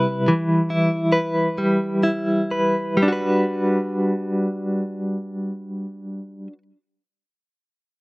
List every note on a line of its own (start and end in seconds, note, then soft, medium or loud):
0.00 0.28 C3 medium
0.00 1.58 G3 soft
0.00 0.70 E4 soft
0.00 1.12 B4 soft
0.28 3.02 E3 medium
0.70 2.02 E4 soft
1.12 2.51 B4 soft
1.58 2.97 G3 soft
2.03 3.08 E4 soft
2.51 3.12 B4 soft
2.97 6.47 G3 soft
3.03 6.53 D4 soft
3.08 6.58 F#4 soft
3.12 6.62 B4 medium